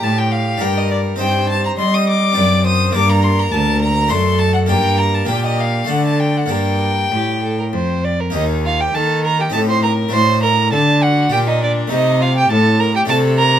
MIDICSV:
0, 0, Header, 1, 5, 480
1, 0, Start_track
1, 0, Key_signature, -2, "minor"
1, 0, Tempo, 584795
1, 987, Time_signature, 3, 2, 24, 8
1, 4348, Tempo, 610998
1, 6748, Tempo, 592885
1, 10991, End_track
2, 0, Start_track
2, 0, Title_t, "Violin"
2, 0, Program_c, 0, 40
2, 26, Note_on_c, 0, 81, 81
2, 151, Note_on_c, 0, 79, 74
2, 164, Note_off_c, 0, 81, 0
2, 261, Note_on_c, 0, 77, 78
2, 273, Note_off_c, 0, 79, 0
2, 508, Note_on_c, 0, 79, 72
2, 520, Note_off_c, 0, 77, 0
2, 633, Note_on_c, 0, 75, 69
2, 646, Note_off_c, 0, 79, 0
2, 742, Note_off_c, 0, 75, 0
2, 747, Note_on_c, 0, 74, 76
2, 813, Note_off_c, 0, 74, 0
2, 986, Note_on_c, 0, 79, 85
2, 1219, Note_off_c, 0, 79, 0
2, 1224, Note_on_c, 0, 81, 83
2, 1344, Note_off_c, 0, 81, 0
2, 1355, Note_on_c, 0, 82, 81
2, 1403, Note_off_c, 0, 82, 0
2, 1458, Note_on_c, 0, 84, 89
2, 1593, Note_on_c, 0, 87, 90
2, 1605, Note_off_c, 0, 84, 0
2, 1712, Note_off_c, 0, 87, 0
2, 1716, Note_on_c, 0, 86, 92
2, 2181, Note_off_c, 0, 86, 0
2, 2185, Note_on_c, 0, 87, 91
2, 2412, Note_off_c, 0, 87, 0
2, 2417, Note_on_c, 0, 86, 101
2, 2541, Note_on_c, 0, 82, 87
2, 2554, Note_off_c, 0, 86, 0
2, 2654, Note_on_c, 0, 84, 90
2, 2667, Note_off_c, 0, 82, 0
2, 2784, Note_on_c, 0, 82, 84
2, 2796, Note_off_c, 0, 84, 0
2, 2889, Note_on_c, 0, 81, 90
2, 2902, Note_off_c, 0, 82, 0
2, 3127, Note_off_c, 0, 81, 0
2, 3132, Note_on_c, 0, 82, 93
2, 3366, Note_on_c, 0, 84, 89
2, 3378, Note_off_c, 0, 82, 0
2, 3601, Note_on_c, 0, 81, 86
2, 3614, Note_off_c, 0, 84, 0
2, 3719, Note_off_c, 0, 81, 0
2, 3724, Note_on_c, 0, 78, 71
2, 3776, Note_off_c, 0, 78, 0
2, 3840, Note_on_c, 0, 79, 91
2, 4091, Note_on_c, 0, 82, 86
2, 4103, Note_off_c, 0, 79, 0
2, 4223, Note_on_c, 0, 81, 78
2, 4235, Note_off_c, 0, 82, 0
2, 4332, Note_off_c, 0, 81, 0
2, 4337, Note_on_c, 0, 79, 83
2, 4457, Note_off_c, 0, 79, 0
2, 4471, Note_on_c, 0, 75, 75
2, 4589, Note_on_c, 0, 77, 74
2, 4600, Note_off_c, 0, 75, 0
2, 4820, Note_on_c, 0, 78, 78
2, 4831, Note_off_c, 0, 77, 0
2, 4937, Note_off_c, 0, 78, 0
2, 4943, Note_on_c, 0, 81, 72
2, 5057, Note_on_c, 0, 79, 73
2, 5068, Note_off_c, 0, 81, 0
2, 5187, Note_on_c, 0, 78, 64
2, 5198, Note_off_c, 0, 79, 0
2, 5293, Note_on_c, 0, 79, 83
2, 5304, Note_off_c, 0, 78, 0
2, 6504, Note_off_c, 0, 79, 0
2, 6751, Note_on_c, 0, 63, 67
2, 6985, Note_on_c, 0, 65, 67
2, 6997, Note_off_c, 0, 63, 0
2, 7113, Note_on_c, 0, 67, 71
2, 7125, Note_off_c, 0, 65, 0
2, 7235, Note_on_c, 0, 69, 73
2, 7248, Note_off_c, 0, 67, 0
2, 7471, Note_on_c, 0, 70, 71
2, 7483, Note_off_c, 0, 69, 0
2, 7588, Note_off_c, 0, 70, 0
2, 7593, Note_on_c, 0, 67, 68
2, 7640, Note_off_c, 0, 67, 0
2, 7712, Note_on_c, 0, 69, 80
2, 7824, Note_off_c, 0, 69, 0
2, 7829, Note_on_c, 0, 72, 66
2, 7945, Note_on_c, 0, 70, 72
2, 7957, Note_off_c, 0, 72, 0
2, 8186, Note_on_c, 0, 72, 83
2, 8198, Note_off_c, 0, 70, 0
2, 8430, Note_on_c, 0, 70, 75
2, 8442, Note_off_c, 0, 72, 0
2, 8653, Note_off_c, 0, 70, 0
2, 8658, Note_on_c, 0, 69, 72
2, 8723, Note_off_c, 0, 69, 0
2, 8904, Note_on_c, 0, 66, 75
2, 9153, Note_on_c, 0, 67, 78
2, 9165, Note_off_c, 0, 66, 0
2, 9274, Note_on_c, 0, 63, 69
2, 9286, Note_off_c, 0, 67, 0
2, 9382, Note_on_c, 0, 62, 76
2, 9394, Note_off_c, 0, 63, 0
2, 9616, Note_on_c, 0, 63, 80
2, 9628, Note_off_c, 0, 62, 0
2, 9866, Note_on_c, 0, 65, 75
2, 9878, Note_off_c, 0, 63, 0
2, 9975, Note_off_c, 0, 65, 0
2, 9980, Note_on_c, 0, 67, 74
2, 10111, Note_on_c, 0, 69, 85
2, 10123, Note_off_c, 0, 67, 0
2, 10343, Note_off_c, 0, 69, 0
2, 10348, Note_on_c, 0, 70, 76
2, 10465, Note_off_c, 0, 70, 0
2, 10473, Note_on_c, 0, 67, 77
2, 10578, Note_off_c, 0, 67, 0
2, 10583, Note_on_c, 0, 69, 86
2, 10820, Note_on_c, 0, 70, 84
2, 10832, Note_off_c, 0, 69, 0
2, 10991, Note_off_c, 0, 70, 0
2, 10991, End_track
3, 0, Start_track
3, 0, Title_t, "Violin"
3, 0, Program_c, 1, 40
3, 0, Note_on_c, 1, 67, 62
3, 495, Note_on_c, 1, 70, 65
3, 507, Note_off_c, 1, 67, 0
3, 977, Note_off_c, 1, 70, 0
3, 981, Note_on_c, 1, 72, 63
3, 1457, Note_off_c, 1, 72, 0
3, 1473, Note_on_c, 1, 75, 70
3, 1941, Note_off_c, 1, 75, 0
3, 1947, Note_on_c, 1, 74, 73
3, 2182, Note_off_c, 1, 74, 0
3, 2187, Note_on_c, 1, 72, 70
3, 2435, Note_on_c, 1, 70, 73
3, 2447, Note_off_c, 1, 72, 0
3, 3378, Note_on_c, 1, 69, 74
3, 3390, Note_off_c, 1, 70, 0
3, 3860, Note_off_c, 1, 69, 0
3, 3868, Note_on_c, 1, 70, 73
3, 4340, Note_off_c, 1, 70, 0
3, 4354, Note_on_c, 1, 67, 60
3, 4811, Note_off_c, 1, 67, 0
3, 4818, Note_on_c, 1, 69, 61
3, 5301, Note_on_c, 1, 70, 56
3, 5313, Note_off_c, 1, 69, 0
3, 5734, Note_off_c, 1, 70, 0
3, 5795, Note_on_c, 1, 67, 55
3, 6013, Note_off_c, 1, 67, 0
3, 6027, Note_on_c, 1, 69, 53
3, 6143, Note_off_c, 1, 69, 0
3, 6152, Note_on_c, 1, 70, 55
3, 6199, Note_off_c, 1, 70, 0
3, 6265, Note_on_c, 1, 72, 63
3, 6507, Note_on_c, 1, 74, 61
3, 6519, Note_off_c, 1, 72, 0
3, 6631, Note_on_c, 1, 70, 53
3, 6643, Note_off_c, 1, 74, 0
3, 6749, Note_off_c, 1, 70, 0
3, 6753, Note_on_c, 1, 75, 74
3, 6818, Note_off_c, 1, 75, 0
3, 6995, Note_on_c, 1, 77, 80
3, 7117, Note_on_c, 1, 79, 74
3, 7129, Note_off_c, 1, 77, 0
3, 7230, Note_on_c, 1, 81, 78
3, 7242, Note_off_c, 1, 79, 0
3, 7466, Note_off_c, 1, 81, 0
3, 7471, Note_on_c, 1, 82, 73
3, 7604, Note_on_c, 1, 79, 72
3, 7616, Note_off_c, 1, 82, 0
3, 7696, Note_off_c, 1, 79, 0
3, 7701, Note_on_c, 1, 81, 88
3, 7751, Note_off_c, 1, 81, 0
3, 7840, Note_on_c, 1, 84, 78
3, 7942, Note_off_c, 1, 84, 0
3, 7947, Note_on_c, 1, 82, 79
3, 8011, Note_off_c, 1, 82, 0
3, 8195, Note_on_c, 1, 84, 90
3, 8424, Note_off_c, 1, 84, 0
3, 8429, Note_on_c, 1, 82, 84
3, 8665, Note_off_c, 1, 82, 0
3, 8670, Note_on_c, 1, 81, 81
3, 8916, Note_on_c, 1, 78, 79
3, 8928, Note_off_c, 1, 81, 0
3, 9150, Note_off_c, 1, 78, 0
3, 9155, Note_on_c, 1, 79, 90
3, 9203, Note_off_c, 1, 79, 0
3, 9287, Note_on_c, 1, 75, 76
3, 9398, Note_off_c, 1, 75, 0
3, 9403, Note_on_c, 1, 74, 79
3, 9468, Note_off_c, 1, 74, 0
3, 9642, Note_on_c, 1, 75, 83
3, 9878, Note_on_c, 1, 77, 85
3, 9890, Note_off_c, 1, 75, 0
3, 9993, Note_off_c, 1, 77, 0
3, 10005, Note_on_c, 1, 79, 85
3, 10114, Note_off_c, 1, 79, 0
3, 10119, Note_on_c, 1, 81, 86
3, 10348, Note_on_c, 1, 82, 92
3, 10360, Note_off_c, 1, 81, 0
3, 10468, Note_off_c, 1, 82, 0
3, 10478, Note_on_c, 1, 79, 84
3, 10524, Note_off_c, 1, 79, 0
3, 10583, Note_on_c, 1, 81, 93
3, 10647, Note_off_c, 1, 81, 0
3, 10819, Note_on_c, 1, 82, 97
3, 10991, Note_off_c, 1, 82, 0
3, 10991, End_track
4, 0, Start_track
4, 0, Title_t, "Harpsichord"
4, 0, Program_c, 2, 6
4, 0, Note_on_c, 2, 62, 45
4, 0, Note_on_c, 2, 67, 40
4, 0, Note_on_c, 2, 70, 40
4, 29, Note_on_c, 2, 45, 55
4, 463, Note_off_c, 2, 62, 0
4, 469, Note_off_c, 2, 67, 0
4, 472, Note_on_c, 2, 62, 47
4, 475, Note_off_c, 2, 70, 0
4, 477, Note_off_c, 2, 45, 0
4, 484, Note_on_c, 2, 67, 47
4, 497, Note_on_c, 2, 70, 50
4, 509, Note_on_c, 2, 43, 54
4, 952, Note_on_c, 2, 60, 46
4, 954, Note_off_c, 2, 62, 0
4, 955, Note_off_c, 2, 43, 0
4, 960, Note_off_c, 2, 67, 0
4, 966, Note_on_c, 2, 63, 43
4, 967, Note_off_c, 2, 70, 0
4, 978, Note_on_c, 2, 72, 43
4, 988, Note_on_c, 2, 43, 51
4, 1437, Note_off_c, 2, 43, 0
4, 1467, Note_on_c, 2, 55, 58
4, 1897, Note_off_c, 2, 60, 0
4, 1907, Note_on_c, 2, 60, 51
4, 1909, Note_off_c, 2, 63, 0
4, 1915, Note_off_c, 2, 55, 0
4, 1915, Note_off_c, 2, 72, 0
4, 1921, Note_on_c, 2, 62, 52
4, 1931, Note_on_c, 2, 74, 51
4, 1944, Note_on_c, 2, 42, 57
4, 2391, Note_off_c, 2, 42, 0
4, 2391, Note_off_c, 2, 60, 0
4, 2391, Note_on_c, 2, 58, 47
4, 2393, Note_off_c, 2, 62, 0
4, 2403, Note_off_c, 2, 74, 0
4, 2403, Note_on_c, 2, 62, 48
4, 2418, Note_on_c, 2, 74, 51
4, 2429, Note_on_c, 2, 43, 53
4, 2871, Note_off_c, 2, 43, 0
4, 2907, Note_on_c, 2, 38, 60
4, 3335, Note_off_c, 2, 58, 0
4, 3342, Note_off_c, 2, 62, 0
4, 3348, Note_on_c, 2, 57, 55
4, 3349, Note_off_c, 2, 74, 0
4, 3351, Note_off_c, 2, 38, 0
4, 3360, Note_on_c, 2, 62, 52
4, 3370, Note_on_c, 2, 74, 53
4, 3384, Note_on_c, 2, 42, 59
4, 3828, Note_off_c, 2, 62, 0
4, 3828, Note_on_c, 2, 58, 49
4, 3830, Note_off_c, 2, 57, 0
4, 3831, Note_off_c, 2, 42, 0
4, 3838, Note_on_c, 2, 62, 44
4, 3842, Note_off_c, 2, 74, 0
4, 3850, Note_on_c, 2, 74, 49
4, 3864, Note_on_c, 2, 43, 55
4, 4299, Note_off_c, 2, 58, 0
4, 4309, Note_on_c, 2, 58, 51
4, 4310, Note_off_c, 2, 62, 0
4, 4315, Note_off_c, 2, 43, 0
4, 4320, Note_on_c, 2, 62, 51
4, 4326, Note_off_c, 2, 74, 0
4, 4335, Note_on_c, 2, 74, 54
4, 4344, Note_on_c, 2, 46, 57
4, 4777, Note_on_c, 2, 57, 48
4, 4781, Note_off_c, 2, 62, 0
4, 4784, Note_off_c, 2, 46, 0
4, 4785, Note_off_c, 2, 58, 0
4, 4790, Note_on_c, 2, 62, 46
4, 4793, Note_off_c, 2, 74, 0
4, 4803, Note_on_c, 2, 74, 44
4, 4812, Note_on_c, 2, 50, 51
4, 5261, Note_off_c, 2, 57, 0
4, 5261, Note_on_c, 2, 58, 41
4, 5262, Note_off_c, 2, 50, 0
4, 5264, Note_off_c, 2, 62, 0
4, 5273, Note_on_c, 2, 62, 41
4, 5274, Note_off_c, 2, 74, 0
4, 5284, Note_on_c, 2, 74, 39
4, 5295, Note_on_c, 2, 43, 44
4, 5747, Note_off_c, 2, 58, 0
4, 5748, Note_off_c, 2, 43, 0
4, 5754, Note_off_c, 2, 62, 0
4, 5780, Note_on_c, 2, 45, 50
4, 6232, Note_off_c, 2, 45, 0
4, 6261, Note_on_c, 2, 41, 46
4, 6709, Note_on_c, 2, 58, 46
4, 6710, Note_off_c, 2, 74, 0
4, 6714, Note_off_c, 2, 41, 0
4, 6720, Note_on_c, 2, 63, 45
4, 6732, Note_on_c, 2, 67, 42
4, 6745, Note_on_c, 2, 39, 50
4, 7198, Note_off_c, 2, 39, 0
4, 7234, Note_on_c, 2, 51, 56
4, 7662, Note_off_c, 2, 58, 0
4, 7668, Note_off_c, 2, 63, 0
4, 7674, Note_off_c, 2, 67, 0
4, 7674, Note_on_c, 2, 60, 50
4, 7679, Note_off_c, 2, 51, 0
4, 7686, Note_on_c, 2, 63, 48
4, 7699, Note_on_c, 2, 67, 50
4, 7710, Note_on_c, 2, 45, 54
4, 8152, Note_on_c, 2, 57, 45
4, 8159, Note_off_c, 2, 60, 0
4, 8160, Note_off_c, 2, 45, 0
4, 8162, Note_on_c, 2, 62, 44
4, 8165, Note_off_c, 2, 63, 0
4, 8172, Note_off_c, 2, 67, 0
4, 8176, Note_on_c, 2, 66, 46
4, 8188, Note_on_c, 2, 45, 49
4, 8640, Note_off_c, 2, 45, 0
4, 8675, Note_on_c, 2, 50, 58
4, 9105, Note_off_c, 2, 57, 0
4, 9110, Note_off_c, 2, 62, 0
4, 9118, Note_off_c, 2, 66, 0
4, 9123, Note_off_c, 2, 50, 0
4, 9132, Note_on_c, 2, 62, 51
4, 9144, Note_on_c, 2, 67, 50
4, 9156, Note_on_c, 2, 46, 60
4, 9600, Note_off_c, 2, 46, 0
4, 9600, Note_on_c, 2, 57, 49
4, 9605, Note_off_c, 2, 62, 0
4, 9611, Note_off_c, 2, 67, 0
4, 9613, Note_on_c, 2, 60, 51
4, 9626, Note_on_c, 2, 67, 49
4, 9636, Note_on_c, 2, 48, 51
4, 10079, Note_off_c, 2, 48, 0
4, 10111, Note_on_c, 2, 45, 63
4, 10543, Note_off_c, 2, 57, 0
4, 10550, Note_off_c, 2, 60, 0
4, 10554, Note_on_c, 2, 57, 55
4, 10556, Note_off_c, 2, 67, 0
4, 10557, Note_off_c, 2, 45, 0
4, 10565, Note_on_c, 2, 62, 55
4, 10578, Note_on_c, 2, 66, 58
4, 10589, Note_on_c, 2, 48, 65
4, 10991, Note_off_c, 2, 48, 0
4, 10991, Note_off_c, 2, 57, 0
4, 10991, Note_off_c, 2, 62, 0
4, 10991, Note_off_c, 2, 66, 0
4, 10991, End_track
5, 0, Start_track
5, 0, Title_t, "Cello"
5, 0, Program_c, 3, 42
5, 28, Note_on_c, 3, 45, 63
5, 500, Note_off_c, 3, 45, 0
5, 512, Note_on_c, 3, 43, 61
5, 979, Note_off_c, 3, 43, 0
5, 991, Note_on_c, 3, 43, 65
5, 1439, Note_off_c, 3, 43, 0
5, 1468, Note_on_c, 3, 55, 66
5, 1949, Note_on_c, 3, 42, 64
5, 1962, Note_off_c, 3, 55, 0
5, 2422, Note_off_c, 3, 42, 0
5, 2427, Note_on_c, 3, 43, 72
5, 2894, Note_off_c, 3, 43, 0
5, 2901, Note_on_c, 3, 38, 70
5, 3380, Note_on_c, 3, 42, 66
5, 3392, Note_off_c, 3, 38, 0
5, 3861, Note_on_c, 3, 43, 70
5, 3874, Note_off_c, 3, 42, 0
5, 4342, Note_off_c, 3, 43, 0
5, 4347, Note_on_c, 3, 46, 63
5, 4808, Note_off_c, 3, 46, 0
5, 4816, Note_on_c, 3, 50, 59
5, 5285, Note_off_c, 3, 50, 0
5, 5294, Note_on_c, 3, 43, 57
5, 5769, Note_off_c, 3, 43, 0
5, 5782, Note_on_c, 3, 45, 52
5, 6264, Note_on_c, 3, 41, 53
5, 6276, Note_off_c, 3, 45, 0
5, 6747, Note_off_c, 3, 41, 0
5, 6752, Note_on_c, 3, 39, 68
5, 7202, Note_off_c, 3, 39, 0
5, 7234, Note_on_c, 3, 51, 65
5, 7702, Note_off_c, 3, 51, 0
5, 7710, Note_on_c, 3, 45, 62
5, 8182, Note_off_c, 3, 45, 0
5, 8192, Note_on_c, 3, 45, 69
5, 8674, Note_on_c, 3, 50, 67
5, 8686, Note_off_c, 3, 45, 0
5, 9152, Note_off_c, 3, 50, 0
5, 9157, Note_on_c, 3, 46, 69
5, 9623, Note_off_c, 3, 46, 0
5, 9630, Note_on_c, 3, 48, 74
5, 10099, Note_off_c, 3, 48, 0
5, 10109, Note_on_c, 3, 45, 72
5, 10578, Note_off_c, 3, 45, 0
5, 10588, Note_on_c, 3, 48, 74
5, 10991, Note_off_c, 3, 48, 0
5, 10991, End_track
0, 0, End_of_file